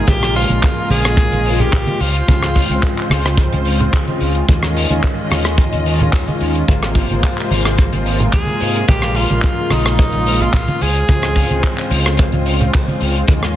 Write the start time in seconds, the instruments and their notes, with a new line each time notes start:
Already playing: string section G#3 F4
0.07 fingered electric bass A#1, analog polysynth C#3 G#3 A#3 F4, tenor saxophone G4, string section A#4, kick, closed hi-hat, high conga, cabasa
0.23 cross-stick
0.35 tenor saxophone F4, open hi-hat, cabasa
0.49 fingered electric bass A#1, analog polysynth C#3 G#3 A#3 F4, closed hi-hat, high conga, cabasa
0.63 kick, clap, closed hi-hat, cabasa
0.90 fingered electric bass A#1, tenor saxophone G#4, open hi-hat, high conga, cabasa
1.05 cross-stick, closed hi-hat, cabasa
1.17 kick, closed hi-hat, cabasa
1.32 fingered electric bass A#1, closed hi-hat, high conga
1.46 open hi-hat, cabasa
1.60 tenor saxophone G4, closed hi-hat, low conga, cabasa
1.73 fingered electric bass A#1, kick, clap, closed hi-hat, cabasa
1.87 closed hi-hat, high conga
2.00 fingered electric bass C#2, tenor saxophone F4, string section C5, open hi-hat, cabasa
2.15 closed hi-hat, cabasa
2.27 fingered electric bass C#2, analog polysynth C#3 G#3 C4 F4, kick, closed hi-hat, high conga, cabasa
2.42 cross-stick, closed hi-hat
2.55 kick, open hi-hat, cabasa
2.69 fingered electric bass C#2, analog polysynth C#3 G#3 C4 F4, closed hi-hat, high conga, cabasa
2.83 kick, clap, closed hi-hat, cabasa
2.97 clap, closed hi-hat
3.10 fingered electric bass C#2, cross-stick, open hi-hat, high conga, cabasa
3.25 cross-stick, closed hi-hat, cabasa
3.37 kick, closed hi-hat, cabasa
3.53 fingered electric bass C#2, closed hi-hat, high conga
3.65 open hi-hat, cabasa
3.80 closed hi-hat, low conga, cabasa
3.93 fingered electric bass C#2, kick, clap, closed hi-hat, cabasa
4.07 closed hi-hat, high conga
4.21 fingered electric bass C#2, open hi-hat, cabasa
4.35 closed hi-hat, cabasa
4.48 fingered electric bass D#2, analog polysynth D#3 G#3 C#4 F4, string section F4 D#5, kick, closed hi-hat, high conga, cabasa
4.63 cross-stick
4.76 open hi-hat, cabasa
4.89 fingered electric bass D#2, analog polysynth D#3 G#3 C#4 F4, closed hi-hat, high conga, cabasa
5.03 kick, clap, closed hi-hat, cabasa
5.30 fingered electric bass D#2, cross-stick, open hi-hat, high conga, cabasa
5.45 cross-stick, closed hi-hat, cabasa
5.58 kick, closed hi-hat, cabasa
5.73 fingered electric bass D#2, closed hi-hat, high conga
5.86 open hi-hat, cabasa
6.00 closed hi-hat, low conga, cabasa
6.13 fingered electric bass D#2, kick, clap, closed hi-hat, cabasa
6.28 closed hi-hat, high conga
6.40 fingered electric bass D#2, open hi-hat, cabasa
6.55 closed hi-hat, cabasa
6.68 fingered electric bass G#1, analog polysynth C3 G#3 A#3 F4, string section A#4 C5, kick, closed hi-hat, high conga, cabasa
6.82 cross-stick, closed hi-hat
6.95 kick, open hi-hat, cabasa
7.10 fingered electric bass G#1, analog polysynth C3 G#3 A#3 F4, closed hi-hat, high conga, cabasa
7.23 kick, clap, closed hi-hat, cabasa
7.37 clap, closed hi-hat
7.51 fingered electric bass G#1, open hi-hat, high conga, cabasa
7.65 cross-stick, closed hi-hat, cabasa
7.78 kick, closed hi-hat, cabasa
7.93 fingered electric bass G#1, closed hi-hat, high conga
8.06 open hi-hat, cabasa
8.20 closed hi-hat, low conga, cabasa
8.33 fingered electric bass D#2, tenor saxophone G#4, kick, clap, closed hi-hat
8.47 closed hi-hat, high conga
8.60 fingered electric bass G#2, open hi-hat, cabasa
8.75 closed hi-hat, cabasa
8.88 fingered electric bass A#1, analog polysynth C#3 G#3 A#3 F4, string section G#3, tenor saxophone G4, kick, closed hi-hat, high conga, cabasa
9.02 cross-stick
9.15 tenor saxophone F4, open hi-hat, cabasa
9.29 fingered electric bass A#1, analog polysynth C#3 G#3 A#3 F4, closed hi-hat, high conga, cabasa
9.42 kick, clap, closed hi-hat, cabasa
9.70 fingered electric bass A#1, tenor saxophone D#4, cross-stick, open hi-hat, high conga, cabasa
9.85 cross-stick, closed hi-hat, cabasa
9.99 kick, closed hi-hat, cabasa
10.13 fingered electric bass A#1, closed hi-hat, high conga
10.26 open hi-hat, cabasa
10.40 tenor saxophone F4, closed hi-hat, low conga, cabasa
10.53 fingered electric bass A#1, kick, clap, closed hi-hat, cabasa
10.68 closed hi-hat, high conga
10.81 fingered electric bass C#2, tenor saxophone G#4, string section C5, open hi-hat, cabasa
10.96 closed hi-hat, cabasa
11.08 fingered electric bass C#2, analog polysynth C#3 G#3 C4 F4, kick, closed hi-hat, high conga, cabasa
11.22 cross-stick, closed hi-hat
11.35 kick, open hi-hat, cabasa
11.50 fingered electric bass C#2, analog polysynth C#3 G#3 C4 F4, closed hi-hat, high conga, cabasa
11.63 kick, clap, closed hi-hat, cabasa
11.78 clap, closed hi-hat
11.91 fingered electric bass C#2, open hi-hat, high conga, cabasa
12.06 cross-stick, closed hi-hat, cabasa
12.17 kick, closed hi-hat, cabasa
12.32 fingered electric bass C#2, closed hi-hat, high conga
12.46 open hi-hat, cabasa
12.61 closed hi-hat, low conga, cabasa
12.73 fingered electric bass C#2, kick, clap, closed hi-hat, cabasa
12.88 closed hi-hat, high conga
13.00 fingered electric bass C#2, open hi-hat, cabasa
13.16 closed hi-hat, cabasa
13.28 fingered electric bass D#2, analog polysynth D#3 G#3 C#4 F4, string section C#5 D#5, kick, closed hi-hat, high conga, cabasa
13.43 cross-stick